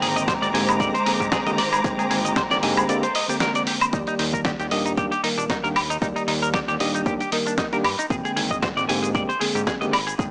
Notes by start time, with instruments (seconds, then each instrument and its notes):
Already playing: tine electric piano D3 G#3 A#3 C4 G5, string section G#3 C5 A#5 D6
0.01 analog synth bass G#1, clean electric guitar G#4, open hi-hat
0.16 clean electric guitar D#5, closed hi-hat, cabasa
0.28 clean electric guitar C5, kick, snare, closed hi-hat, cabasa
0.42 analog synth bass G#1, clean electric guitar D5, closed hi-hat, cabasa
0.53 analog synth bass G#2, tine electric piano D3 G#3 A#3 C4 G4, clean electric guitar G#5, open hi-hat
0.68 clean electric guitar G#4, closed hi-hat, cabasa, high woodblock
0.79 tine electric piano D3 G#3 A#3 C4 G4, clean electric guitar D5, kick, closed hi-hat, cabasa
0.94 clean electric guitar C5, closed hi-hat, cabasa
1.06 tine electric piano D3 G#3 A#3 C4 G#4, clean electric guitar G#4, open hi-hat
1.20 analog synth bass G#2, clean electric guitar G4, kick, closed hi-hat, cabasa
1.32 clean electric guitar G#4, kick, snare, closed hi-hat, cabasa
1.46 analog synth bass G#1, tine electric piano D3 G#3 A#3 C4 G4, clean electric guitar D#5, closed hi-hat, cabasa
1.58 clean electric guitar D5, open hi-hat
1.73 clean electric guitar G#4, closed hi-hat, cabasa, high woodblock
1.84 analog synth bass G#1, tine electric piano D3 G#3 A#3 C4 G5, clean electric guitar G#4, kick, closed hi-hat, cabasa
1.99 clean electric guitar G#4, closed hi-hat, cabasa
2.11 analog synth bass G#1, clean electric guitar G#4, open hi-hat
2.25 clean electric guitar D#5, closed hi-hat, cabasa
2.36 clean electric guitar C5, kick, snare, closed hi-hat, cabasa
2.50 analog synth bass G#1, clean electric guitar D5, snare, closed hi-hat, cabasa
2.62 analog synth bass G#2, tine electric piano D3 G#3 A#3 C4 G4, clean electric guitar G#5, open hi-hat
2.77 clean electric guitar G#4, closed hi-hat, cabasa, high woodblock
2.88 tine electric piano D3 G#3 A#3 C4 G4, clean electric guitar D5, closed hi-hat, cabasa
3.03 clean electric guitar C5, closed hi-hat, cabasa
3.15 clean electric guitar D#5, open hi-hat
3.28 tine electric piano D3 G#3 A#3 C4, clean electric guitar G4, open hi-hat, cabasa
3.40 clean electric guitar A#4, snare, closed hi-hat, cabasa
3.55 clean electric guitar D5, closed hi-hat, cabasa
3.67 clean electric guitar G4, open hi-hat
3.81 clean electric guitar C5, closed hi-hat, cabasa, high woodblock
3.92 analog synth bass D#2, tine electric piano D#3 G3 A#3 G4 D5, clean electric guitar D#4, kick, closed hi-hat, cabasa
4.07 clean electric guitar D#4, closed hi-hat, cabasa
4.19 analog synth bass D#2, clean electric guitar D#4, open hi-hat
4.33 clean electric guitar A#4, kick, closed hi-hat, cabasa
4.45 clean electric guitar G4, kick, snare, closed hi-hat, cabasa
4.59 analog synth bass D#2, clean electric guitar G4, closed hi-hat, cabasa
4.71 analog synth bass D#1, tine electric piano D#3 G3 A#3 D4 G4, clean electric guitar D#5, open hi-hat
4.86 clean electric guitar D#4, closed hi-hat, cabasa
4.97 tine electric piano D#3 G3 A#3 D4 G4, clean electric guitar G4, kick, closed hi-hat, cabasa
5.11 clean electric guitar G4, closed hi-hat, cabasa
5.23 tine electric piano D#3 G3 A#3 A#4, clean electric guitar D#4, open hi-hat
5.38 analog synth bass D#1, clean electric guitar D4, closed hi-hat, cabasa
5.50 clean electric guitar D#4, kick, snare, closed hi-hat, cabasa
5.63 analog synth bass D#2, tine electric piano D#3 G3 A#3 D4 G4, clean electric guitar A#4, closed hi-hat, cabasa
5.76 clean electric guitar G4, open hi-hat, high woodblock
5.90 clean electric guitar D#4, closed hi-hat, cabasa
6.01 analog synth bass D#2, tine electric piano D#3 G3 A#3 G4 D5, clean electric guitar D#4, kick, closed hi-hat, cabasa
6.16 clean electric guitar D#4, closed hi-hat, cabasa
6.27 analog synth bass D#2, clean electric guitar D#4, open hi-hat
6.42 clean electric guitar A#4, closed hi-hat, cabasa
6.54 clean electric guitar G4, kick, snare, closed hi-hat, cabasa
6.68 analog synth bass D#2, clean electric guitar G4, closed hi-hat, cabasa
6.80 analog synth bass D#1, tine electric piano D#3 G3 A#3 D4 G4, clean electric guitar D#5, open hi-hat
6.94 clean electric guitar D#4, closed hi-hat, cabasa
7.06 analog synth bass D#2, tine electric piano D#3 G3 A#3 D4 G4, clean electric guitar G4, kick, closed hi-hat, cabasa
7.20 clean electric guitar G4, closed hi-hat, cabasa
7.32 tine electric piano D#3 G3 A#3 A#4, clean electric guitar D#4, open hi-hat
7.46 clean electric guitar D4, closed hi-hat, cabasa
7.58 clean electric guitar D#4, kick, snare, closed hi-hat, cabasa
7.72 tine electric piano D#3 G3 A#3 D4 G4, clean electric guitar A#4, closed hi-hat, cabasa
7.84 analog synth bass G2, clean electric guitar G4, open hi-hat, high woodblock
7.99 clean electric guitar D#4, closed hi-hat, cabasa
8.10 analog synth bass G#1, tine electric piano D3 G#3 A#3 C4 G5, clean electric guitar G#4, kick, closed hi-hat, cabasa
8.25 clean electric guitar G#4, closed hi-hat, cabasa
8.36 analog synth bass G#1, clean electric guitar G#4, open hi-hat
8.51 clean electric guitar D#5, kick, cabasa
8.62 clean electric guitar C5, kick, snare, closed hi-hat, cabasa
8.77 analog synth bass G#1, clean electric guitar D5, closed hi-hat, cabasa
8.88 analog synth bass G#2, tine electric piano D3 G#3 A#3 C4 G4, clean electric guitar G#5, open hi-hat
9.03 clean electric guitar G#4, closed hi-hat, cabasa
9.15 tine electric piano D3 G#3 A#3 C4 G4, clean electric guitar D5, kick, closed hi-hat, cabasa
9.29 clean electric guitar C5, closed hi-hat, cabasa
9.40 tine electric piano D3 G#3 A#3 C4 G#4, clean electric guitar G#4, open hi-hat
9.55 analog synth bass G#2, clean electric guitar G4, closed hi-hat, cabasa
9.67 clean electric guitar G#4, kick, snare, closed hi-hat, cabasa
9.81 analog synth bass G#1, tine electric piano D3 G#3 A#3 C4 G4, clean electric guitar D#5, closed hi-hat, cabasa
9.93 clean electric guitar D5, open hi-hat, high woodblock
10.07 clean electric guitar G#4, closed hi-hat, cabasa
10.19 analog synth bass G#1, tine electric piano D3 G#3 A#3 C4 G5, clean electric guitar G#4, kick, closed hi-hat, cabasa